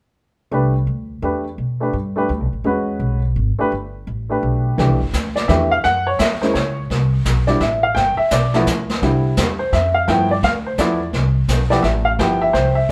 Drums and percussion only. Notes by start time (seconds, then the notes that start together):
4.78 brush sweep, kick, snare
5.13 kick, snare, hi-hat pedal
5.36 snare
5.49 kick, snare
5.84 brush sweep, kick, snare
6.19 kick, snare, hi-hat pedal
6.42 snare
6.55 kick, snare
6.90 brush sweep, kick, snare
7.25 kick, snare, hi-hat pedal
7.47 snare
7.60 kick, snare
7.96 brush sweep, kick, snare
8.31 kick, snare, hi-hat pedal
8.54 snare
8.67 kick, snare, hi-hat pedal
8.89 snare
9.02 brush sweep, kick, snare
9.37 kick, snare, hi-hat pedal
9.73 kick, snare
10.08 brush sweep, kick, snare
10.43 kick, snare
10.78 kick, snare, hi-hat pedal
11.13 brush sweep, kick, snare
11.48 kick, snare, hi-hat pedal
11.71 snare
11.84 kick, snare
12.19 brush sweep, kick, snare
12.54 kick, snare